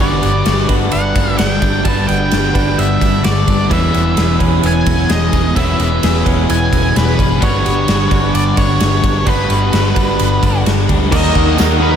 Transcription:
0.00 G1 G2 D3 G3 B3 D4 F#4 B4 D5
0.23 G1 B3, ride
0.46 G1 F#4, snare, ride
0.68 G1 G3 D4 F#4 B4, kick, ride
0.91 G1 B3 F#5, ride
1.15 G1 D4, kick, ride
1.38 G1 F#5, snare, ride
1.49 G5
1.60 G1 G2 D3 G3 D4, kick, ride
1.84 G1 G2 D3 G3 B3 D4 F#4 A5, kick, ride
1.88 B4
2.07 G1 B3 G5, ride
2.31 G1, snare, ride
2.54 G1 G3 D4 F#4 B4, kick, ride
2.77 G1 B3 E5, ride
3.00 G1 D4, kick, ride
3.24 G1 F#4 D5, snare, ride
3.47 G1 G2 D3 G3 D4, kick, ride
3.69 E1 E2 B2 E3 G#3 B3 C#4 B4 E5, kick, ride
3.94 E1 B3, ride
4.17 E1 G#4, snare, ride
4.39 E1 E2 E3 G#3 B3 C#4 B4, kick, ride
4.63 E1 B3 G#5, ride
4.86 E1 C#4, kick, ride
5.10 E1 G#4 D#5, snare, ride
5.32 E1 E2 B2 E3 C#4, kick, ride
5.55 E1 E2 B2 E3 G#3 B3 C#4 B4 E5, kick, ride
5.79 E1 B3, ride
6.03 E1 G#4, snare, ride
6.25 E1 E2 E3 G#3 B3 C#4 B4, kick, ride
6.50 E1 B3 G#5, ride
6.73 E1 C#4, kick, ride
6.96 E1 G#4 B4, snare, ride
7.17 F#1 E2 B2 E3 C#4, kick, ride
7.40 G1 G2 D3 G3 B3 D4 F#4 C#5, kick, ride
7.44 B4
7.65 G1 B3, ride
7.88 G1 F#4, snare, ride
8.09 G1 G3 D4 F#4 B4, kick, ride
8.34 G1 B3 D5, ride
8.57 G1 D4 C#5, kick, ride
8.80 G1 F#4, snare, ride
9.02 G1 G2 D3 G3 D4, kick, ride
9.26 G1 G2 D3 G3 B3 D4 F#4 B4, kick, ride
9.50 G1 B3, ride
9.73 G1 F#4, snare, ride
9.95 G1 G3 D4 F#4 B4, kick, ride
10.19 G1 B3, ride
10.43 G1 D4, kick, ride
10.66 G1 F#4, snare, ride
10.87 D2 G2 D3 G3 D4, kick, ride
11.10 D#2 D#3 F#3 A#3 D#4 F#4 A#4 D#5 F#5 D#6, kick, crash
11.15 A#4
11.34 D#2 D#3 A#3 D#4, kick
11.57 D#2 D#3 F#3 A#3 D#4 F#4, snare, tambourine, crash
11.61 A#4
11.80 D#3 A#3 D#4 F#4 A#4 B4
11.85 D#4

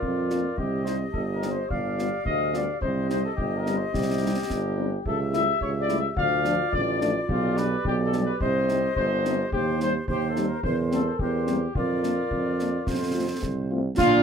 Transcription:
Already playing: F4 A#4 D5
0.02 F2, concert bass drum
0.30 A#3 D4 F4, snare
0.57 C2 G4 D#5, concert bass drum
0.84 G3 C4 D#4 C5, snare
1.13 G1 A4, concert bass drum
1.32 A#4
1.42 G3 C4 D#4, snare
1.51 C5
1.68 G1 D5 F5, concert bass drum
1.99 G3 B3 F4, snare
2.25 D2 D#5, concert bass drum
2.53 G3 B3 F4 D5, snare
2.80 C2 G4 C5 D#5, concert bass drum
3.09 G3 C4 D#4 C5, snare
3.23 A4
3.37 G1 G4, concert bass drum
3.57 A#4
3.66 G3 C4 D#4, snare
3.76 C5
3.93 C2 G4, concert bass drum, snare
4.22 G3 C4 D#4
4.50 G1, concert bass drum, snare
4.77 G3 C4 D#4
5.05 C#2 G4 A4 E5, concert bass drum
5.33 G3 A3 E4 E5, snare
5.60 C#2 C#5, concert bass drum
5.81 D5
5.89 G3 A3 E4, snare
5.98 E5
6.16 D2 F4 D5 F5, concert bass drum
6.45 F3 A3 D4, snare
6.72 A1 D5, concert bass drum
7.01 F3 A3 D4, snare
7.29 B1 F4 G4, concert bass drum
7.57 G3 D4 B4, snare
7.85 B1 G4, concert bass drum
8.05 A4
8.13 G3 D4, snare
8.24 B4
8.40 C2 C5 D#5, concert bass drum
8.69 G3 C4 D#4, snare
8.96 G1 C5, concert bass drum
9.25 G3 C4 D#4, snare
9.52 D#2 G4 C5, concert bass drum
9.80 G3 C4 D#4 C5, snare
10.08 D#2 G4 C5, concert bass drum
10.28 A4
10.36 G3 C4 D#4, snare
10.46 A#4
10.63 E2 A#4 C5, concert bass drum
10.91 G3 A#3 C4 A4, snare
11.19 E2 G4 A#4 C5, concert bass drum
11.47 G3 A#3 C4, snare
11.74 F2 F4 A#4 D5, concert bass drum
12.02 A#3 D4, snare
12.31 F2, concert bass drum
12.59 A#3 D4, snare
12.87 F2 A4 C5, concert bass drum, snare
13.15 A3 C4 F4
13.42 C2, concert bass drum, snare
13.72 A3 C4 F4
13.97 A#2 D4 F4 F5, concert bass drum, snare, crash

